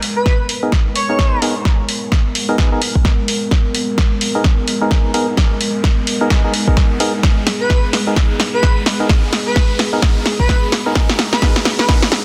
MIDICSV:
0, 0, Header, 1, 6, 480
1, 0, Start_track
1, 0, Key_signature, 5, "minor"
1, 0, Tempo, 465116
1, 1707, Time_signature, 4, 2, 24, 8
1, 12638, End_track
2, 0, Start_track
2, 0, Title_t, "Digital synth lead"
2, 0, Program_c, 0, 84
2, 166, Note_on_c, 0, 71, 90
2, 352, Note_off_c, 0, 71, 0
2, 984, Note_on_c, 0, 73, 90
2, 1465, Note_off_c, 0, 73, 0
2, 7847, Note_on_c, 0, 71, 84
2, 8032, Note_off_c, 0, 71, 0
2, 8809, Note_on_c, 0, 71, 91
2, 8993, Note_off_c, 0, 71, 0
2, 9768, Note_on_c, 0, 71, 88
2, 9953, Note_off_c, 0, 71, 0
2, 10727, Note_on_c, 0, 71, 89
2, 10912, Note_off_c, 0, 71, 0
2, 11690, Note_on_c, 0, 71, 92
2, 11771, Note_off_c, 0, 71, 0
2, 12170, Note_on_c, 0, 71, 90
2, 12251, Note_off_c, 0, 71, 0
2, 12638, End_track
3, 0, Start_track
3, 0, Title_t, "Analog synth pad"
3, 0, Program_c, 1, 89
3, 0, Note_on_c, 1, 56, 76
3, 0, Note_on_c, 1, 59, 70
3, 0, Note_on_c, 1, 70, 83
3, 7454, Note_off_c, 1, 70, 0
3, 7467, Note_on_c, 1, 68, 84
3, 12638, Note_off_c, 1, 56, 0
3, 12638, Note_off_c, 1, 59, 0
3, 12638, Note_off_c, 1, 68, 0
3, 12638, End_track
4, 0, Start_track
4, 0, Title_t, "Synth stab"
4, 0, Program_c, 2, 62
4, 648, Note_on_c, 2, 59, 73
4, 648, Note_on_c, 2, 63, 67
4, 648, Note_on_c, 2, 68, 69
4, 648, Note_on_c, 2, 70, 84
4, 739, Note_off_c, 2, 59, 0
4, 739, Note_off_c, 2, 63, 0
4, 739, Note_off_c, 2, 68, 0
4, 739, Note_off_c, 2, 70, 0
4, 1128, Note_on_c, 2, 59, 78
4, 1128, Note_on_c, 2, 63, 72
4, 1128, Note_on_c, 2, 68, 76
4, 1128, Note_on_c, 2, 70, 91
4, 1442, Note_off_c, 2, 59, 0
4, 1442, Note_off_c, 2, 63, 0
4, 1442, Note_off_c, 2, 68, 0
4, 1442, Note_off_c, 2, 70, 0
4, 1465, Note_on_c, 2, 59, 96
4, 1465, Note_on_c, 2, 63, 88
4, 1465, Note_on_c, 2, 68, 86
4, 1465, Note_on_c, 2, 70, 102
4, 1598, Note_off_c, 2, 59, 0
4, 1598, Note_off_c, 2, 63, 0
4, 1599, Note_off_c, 2, 68, 0
4, 1599, Note_off_c, 2, 70, 0
4, 2568, Note_on_c, 2, 59, 88
4, 2568, Note_on_c, 2, 63, 81
4, 2568, Note_on_c, 2, 68, 79
4, 2568, Note_on_c, 2, 70, 101
4, 2651, Note_off_c, 2, 59, 0
4, 2651, Note_off_c, 2, 63, 0
4, 2651, Note_off_c, 2, 68, 0
4, 2651, Note_off_c, 2, 70, 0
4, 2665, Note_on_c, 2, 59, 83
4, 2665, Note_on_c, 2, 63, 74
4, 2665, Note_on_c, 2, 68, 77
4, 2787, Note_off_c, 2, 59, 0
4, 2788, Note_off_c, 2, 63, 0
4, 2788, Note_off_c, 2, 68, 0
4, 2809, Note_on_c, 2, 59, 74
4, 2809, Note_on_c, 2, 63, 67
4, 2809, Note_on_c, 2, 68, 66
4, 2809, Note_on_c, 2, 70, 84
4, 2899, Note_off_c, 2, 59, 0
4, 2899, Note_off_c, 2, 63, 0
4, 2899, Note_off_c, 2, 68, 0
4, 2899, Note_off_c, 2, 70, 0
4, 4489, Note_on_c, 2, 59, 78
4, 4489, Note_on_c, 2, 63, 69
4, 4489, Note_on_c, 2, 68, 69
4, 4489, Note_on_c, 2, 70, 84
4, 4579, Note_off_c, 2, 59, 0
4, 4579, Note_off_c, 2, 63, 0
4, 4579, Note_off_c, 2, 68, 0
4, 4579, Note_off_c, 2, 70, 0
4, 4968, Note_on_c, 2, 63, 74
4, 4968, Note_on_c, 2, 68, 73
4, 4969, Note_on_c, 2, 59, 82
4, 4969, Note_on_c, 2, 70, 87
4, 5283, Note_off_c, 2, 59, 0
4, 5283, Note_off_c, 2, 63, 0
4, 5283, Note_off_c, 2, 68, 0
4, 5283, Note_off_c, 2, 70, 0
4, 5305, Note_on_c, 2, 63, 89
4, 5305, Note_on_c, 2, 68, 88
4, 5306, Note_on_c, 2, 59, 98
4, 5306, Note_on_c, 2, 70, 106
4, 5439, Note_off_c, 2, 59, 0
4, 5439, Note_off_c, 2, 63, 0
4, 5439, Note_off_c, 2, 68, 0
4, 5439, Note_off_c, 2, 70, 0
4, 6409, Note_on_c, 2, 59, 86
4, 6409, Note_on_c, 2, 63, 81
4, 6409, Note_on_c, 2, 68, 78
4, 6409, Note_on_c, 2, 70, 100
4, 6491, Note_off_c, 2, 63, 0
4, 6491, Note_off_c, 2, 68, 0
4, 6492, Note_off_c, 2, 59, 0
4, 6492, Note_off_c, 2, 70, 0
4, 6649, Note_on_c, 2, 59, 76
4, 6649, Note_on_c, 2, 63, 69
4, 6649, Note_on_c, 2, 68, 67
4, 6649, Note_on_c, 2, 70, 84
4, 6739, Note_off_c, 2, 59, 0
4, 6739, Note_off_c, 2, 63, 0
4, 6739, Note_off_c, 2, 68, 0
4, 6739, Note_off_c, 2, 70, 0
4, 6889, Note_on_c, 2, 59, 97
4, 6889, Note_on_c, 2, 63, 90
4, 6889, Note_on_c, 2, 68, 91
4, 6889, Note_on_c, 2, 70, 108
4, 6979, Note_off_c, 2, 59, 0
4, 6979, Note_off_c, 2, 63, 0
4, 6979, Note_off_c, 2, 68, 0
4, 6979, Note_off_c, 2, 70, 0
4, 7225, Note_on_c, 2, 59, 100
4, 7225, Note_on_c, 2, 63, 92
4, 7225, Note_on_c, 2, 68, 94
4, 7225, Note_on_c, 2, 70, 113
4, 7359, Note_off_c, 2, 59, 0
4, 7359, Note_off_c, 2, 63, 0
4, 7359, Note_off_c, 2, 68, 0
4, 7359, Note_off_c, 2, 70, 0
4, 8328, Note_on_c, 2, 59, 70
4, 8328, Note_on_c, 2, 63, 64
4, 8328, Note_on_c, 2, 68, 65
4, 8328, Note_on_c, 2, 70, 79
4, 8410, Note_off_c, 2, 59, 0
4, 8410, Note_off_c, 2, 63, 0
4, 8410, Note_off_c, 2, 68, 0
4, 8410, Note_off_c, 2, 70, 0
4, 9287, Note_on_c, 2, 59, 72
4, 9287, Note_on_c, 2, 63, 69
4, 9287, Note_on_c, 2, 68, 67
4, 9287, Note_on_c, 2, 70, 84
4, 9370, Note_off_c, 2, 59, 0
4, 9370, Note_off_c, 2, 63, 0
4, 9370, Note_off_c, 2, 68, 0
4, 9370, Note_off_c, 2, 70, 0
4, 10247, Note_on_c, 2, 59, 73
4, 10247, Note_on_c, 2, 63, 66
4, 10247, Note_on_c, 2, 70, 79
4, 10248, Note_on_c, 2, 68, 69
4, 10330, Note_off_c, 2, 59, 0
4, 10330, Note_off_c, 2, 63, 0
4, 10330, Note_off_c, 2, 68, 0
4, 10330, Note_off_c, 2, 70, 0
4, 11208, Note_on_c, 2, 59, 76
4, 11208, Note_on_c, 2, 63, 71
4, 11208, Note_on_c, 2, 68, 69
4, 11208, Note_on_c, 2, 70, 84
4, 11290, Note_off_c, 2, 59, 0
4, 11290, Note_off_c, 2, 63, 0
4, 11290, Note_off_c, 2, 68, 0
4, 11290, Note_off_c, 2, 70, 0
4, 11785, Note_on_c, 2, 59, 76
4, 11785, Note_on_c, 2, 70, 86
4, 11786, Note_on_c, 2, 63, 68
4, 11786, Note_on_c, 2, 68, 70
4, 11919, Note_off_c, 2, 59, 0
4, 11919, Note_off_c, 2, 63, 0
4, 11919, Note_off_c, 2, 68, 0
4, 11919, Note_off_c, 2, 70, 0
4, 12265, Note_on_c, 2, 70, 87
4, 12266, Note_on_c, 2, 59, 80
4, 12266, Note_on_c, 2, 63, 72
4, 12266, Note_on_c, 2, 68, 73
4, 12399, Note_off_c, 2, 59, 0
4, 12399, Note_off_c, 2, 63, 0
4, 12399, Note_off_c, 2, 68, 0
4, 12399, Note_off_c, 2, 70, 0
4, 12638, End_track
5, 0, Start_track
5, 0, Title_t, "Riser"
5, 0, Program_c, 3, 103
5, 0, Note_on_c, 3, 60, 73
5, 12638, Note_off_c, 3, 60, 0
5, 12638, End_track
6, 0, Start_track
6, 0, Title_t, "Drums"
6, 26, Note_on_c, 9, 46, 103
6, 129, Note_off_c, 9, 46, 0
6, 266, Note_on_c, 9, 36, 111
6, 267, Note_on_c, 9, 38, 49
6, 369, Note_off_c, 9, 36, 0
6, 370, Note_off_c, 9, 38, 0
6, 506, Note_on_c, 9, 46, 102
6, 609, Note_off_c, 9, 46, 0
6, 746, Note_on_c, 9, 36, 115
6, 746, Note_on_c, 9, 38, 49
6, 849, Note_off_c, 9, 36, 0
6, 850, Note_off_c, 9, 38, 0
6, 986, Note_on_c, 9, 46, 103
6, 1089, Note_off_c, 9, 46, 0
6, 1226, Note_on_c, 9, 36, 115
6, 1226, Note_on_c, 9, 38, 50
6, 1329, Note_off_c, 9, 36, 0
6, 1329, Note_off_c, 9, 38, 0
6, 1465, Note_on_c, 9, 46, 99
6, 1569, Note_off_c, 9, 46, 0
6, 1705, Note_on_c, 9, 36, 116
6, 1706, Note_on_c, 9, 38, 52
6, 1809, Note_off_c, 9, 36, 0
6, 1810, Note_off_c, 9, 38, 0
6, 1946, Note_on_c, 9, 46, 107
6, 2049, Note_off_c, 9, 46, 0
6, 2186, Note_on_c, 9, 36, 120
6, 2187, Note_on_c, 9, 38, 53
6, 2289, Note_off_c, 9, 36, 0
6, 2290, Note_off_c, 9, 38, 0
6, 2426, Note_on_c, 9, 46, 108
6, 2529, Note_off_c, 9, 46, 0
6, 2665, Note_on_c, 9, 36, 114
6, 2666, Note_on_c, 9, 38, 55
6, 2769, Note_off_c, 9, 36, 0
6, 2769, Note_off_c, 9, 38, 0
6, 2906, Note_on_c, 9, 46, 110
6, 3009, Note_off_c, 9, 46, 0
6, 3049, Note_on_c, 9, 36, 60
6, 3146, Note_off_c, 9, 36, 0
6, 3146, Note_on_c, 9, 36, 118
6, 3147, Note_on_c, 9, 38, 54
6, 3249, Note_off_c, 9, 36, 0
6, 3250, Note_off_c, 9, 38, 0
6, 3386, Note_on_c, 9, 46, 101
6, 3489, Note_off_c, 9, 46, 0
6, 3626, Note_on_c, 9, 36, 118
6, 3626, Note_on_c, 9, 38, 58
6, 3729, Note_off_c, 9, 36, 0
6, 3729, Note_off_c, 9, 38, 0
6, 3865, Note_on_c, 9, 46, 113
6, 3968, Note_off_c, 9, 46, 0
6, 4106, Note_on_c, 9, 36, 122
6, 4106, Note_on_c, 9, 38, 62
6, 4209, Note_off_c, 9, 36, 0
6, 4209, Note_off_c, 9, 38, 0
6, 4346, Note_on_c, 9, 46, 109
6, 4449, Note_off_c, 9, 46, 0
6, 4585, Note_on_c, 9, 38, 59
6, 4586, Note_on_c, 9, 36, 120
6, 4688, Note_off_c, 9, 38, 0
6, 4689, Note_off_c, 9, 36, 0
6, 4825, Note_on_c, 9, 46, 109
6, 4928, Note_off_c, 9, 46, 0
6, 5066, Note_on_c, 9, 36, 121
6, 5066, Note_on_c, 9, 38, 60
6, 5169, Note_off_c, 9, 36, 0
6, 5169, Note_off_c, 9, 38, 0
6, 5306, Note_on_c, 9, 46, 103
6, 5409, Note_off_c, 9, 46, 0
6, 5546, Note_on_c, 9, 36, 116
6, 5546, Note_on_c, 9, 38, 65
6, 5649, Note_off_c, 9, 36, 0
6, 5649, Note_off_c, 9, 38, 0
6, 5786, Note_on_c, 9, 46, 111
6, 5889, Note_off_c, 9, 46, 0
6, 6026, Note_on_c, 9, 36, 121
6, 6026, Note_on_c, 9, 38, 69
6, 6129, Note_off_c, 9, 36, 0
6, 6129, Note_off_c, 9, 38, 0
6, 6265, Note_on_c, 9, 46, 108
6, 6369, Note_off_c, 9, 46, 0
6, 6505, Note_on_c, 9, 38, 70
6, 6506, Note_on_c, 9, 36, 120
6, 6609, Note_off_c, 9, 36, 0
6, 6609, Note_off_c, 9, 38, 0
6, 6745, Note_on_c, 9, 46, 108
6, 6848, Note_off_c, 9, 46, 0
6, 6889, Note_on_c, 9, 36, 62
6, 6985, Note_on_c, 9, 38, 67
6, 6986, Note_off_c, 9, 36, 0
6, 6986, Note_on_c, 9, 36, 124
6, 7088, Note_off_c, 9, 38, 0
6, 7089, Note_off_c, 9, 36, 0
6, 7225, Note_on_c, 9, 46, 107
6, 7328, Note_off_c, 9, 46, 0
6, 7465, Note_on_c, 9, 38, 73
6, 7466, Note_on_c, 9, 36, 114
6, 7568, Note_off_c, 9, 38, 0
6, 7569, Note_off_c, 9, 36, 0
6, 7705, Note_on_c, 9, 38, 77
6, 7705, Note_on_c, 9, 46, 106
6, 7808, Note_off_c, 9, 38, 0
6, 7808, Note_off_c, 9, 46, 0
6, 7945, Note_on_c, 9, 36, 113
6, 7945, Note_on_c, 9, 38, 77
6, 8048, Note_off_c, 9, 38, 0
6, 8049, Note_off_c, 9, 36, 0
6, 8186, Note_on_c, 9, 38, 75
6, 8186, Note_on_c, 9, 46, 105
6, 8289, Note_off_c, 9, 38, 0
6, 8289, Note_off_c, 9, 46, 0
6, 8426, Note_on_c, 9, 36, 114
6, 8426, Note_on_c, 9, 38, 78
6, 8529, Note_off_c, 9, 36, 0
6, 8529, Note_off_c, 9, 38, 0
6, 8665, Note_on_c, 9, 38, 78
6, 8665, Note_on_c, 9, 46, 103
6, 8768, Note_off_c, 9, 38, 0
6, 8768, Note_off_c, 9, 46, 0
6, 8905, Note_on_c, 9, 36, 122
6, 8905, Note_on_c, 9, 38, 76
6, 9009, Note_off_c, 9, 36, 0
6, 9009, Note_off_c, 9, 38, 0
6, 9145, Note_on_c, 9, 38, 78
6, 9145, Note_on_c, 9, 46, 98
6, 9248, Note_off_c, 9, 38, 0
6, 9248, Note_off_c, 9, 46, 0
6, 9385, Note_on_c, 9, 36, 114
6, 9385, Note_on_c, 9, 38, 83
6, 9488, Note_off_c, 9, 38, 0
6, 9489, Note_off_c, 9, 36, 0
6, 9624, Note_on_c, 9, 38, 88
6, 9624, Note_on_c, 9, 46, 105
6, 9728, Note_off_c, 9, 38, 0
6, 9728, Note_off_c, 9, 46, 0
6, 9864, Note_on_c, 9, 38, 84
6, 9865, Note_on_c, 9, 36, 115
6, 9967, Note_off_c, 9, 38, 0
6, 9969, Note_off_c, 9, 36, 0
6, 10105, Note_on_c, 9, 38, 88
6, 10105, Note_on_c, 9, 46, 103
6, 10208, Note_off_c, 9, 38, 0
6, 10208, Note_off_c, 9, 46, 0
6, 10345, Note_on_c, 9, 36, 118
6, 10345, Note_on_c, 9, 38, 89
6, 10448, Note_off_c, 9, 38, 0
6, 10449, Note_off_c, 9, 36, 0
6, 10584, Note_on_c, 9, 38, 90
6, 10584, Note_on_c, 9, 46, 108
6, 10688, Note_off_c, 9, 38, 0
6, 10688, Note_off_c, 9, 46, 0
6, 10729, Note_on_c, 9, 36, 57
6, 10825, Note_on_c, 9, 38, 88
6, 10826, Note_off_c, 9, 36, 0
6, 10826, Note_on_c, 9, 36, 114
6, 10929, Note_off_c, 9, 36, 0
6, 10929, Note_off_c, 9, 38, 0
6, 11066, Note_on_c, 9, 38, 86
6, 11066, Note_on_c, 9, 46, 100
6, 11169, Note_off_c, 9, 38, 0
6, 11169, Note_off_c, 9, 46, 0
6, 11305, Note_on_c, 9, 38, 94
6, 11306, Note_on_c, 9, 36, 116
6, 11408, Note_off_c, 9, 38, 0
6, 11409, Note_off_c, 9, 36, 0
6, 11449, Note_on_c, 9, 38, 83
6, 11545, Note_off_c, 9, 38, 0
6, 11545, Note_on_c, 9, 38, 96
6, 11545, Note_on_c, 9, 46, 105
6, 11648, Note_off_c, 9, 38, 0
6, 11648, Note_off_c, 9, 46, 0
6, 11690, Note_on_c, 9, 38, 81
6, 11786, Note_on_c, 9, 36, 114
6, 11787, Note_off_c, 9, 38, 0
6, 11787, Note_on_c, 9, 38, 96
6, 11889, Note_off_c, 9, 36, 0
6, 11890, Note_off_c, 9, 38, 0
6, 11930, Note_on_c, 9, 38, 84
6, 12027, Note_off_c, 9, 38, 0
6, 12027, Note_on_c, 9, 38, 96
6, 12027, Note_on_c, 9, 46, 98
6, 12130, Note_off_c, 9, 38, 0
6, 12130, Note_off_c, 9, 46, 0
6, 12169, Note_on_c, 9, 38, 88
6, 12266, Note_off_c, 9, 38, 0
6, 12266, Note_on_c, 9, 36, 117
6, 12266, Note_on_c, 9, 38, 97
6, 12369, Note_off_c, 9, 38, 0
6, 12370, Note_off_c, 9, 36, 0
6, 12409, Note_on_c, 9, 38, 88
6, 12505, Note_off_c, 9, 38, 0
6, 12505, Note_on_c, 9, 38, 101
6, 12505, Note_on_c, 9, 46, 106
6, 12609, Note_off_c, 9, 38, 0
6, 12609, Note_off_c, 9, 46, 0
6, 12638, End_track
0, 0, End_of_file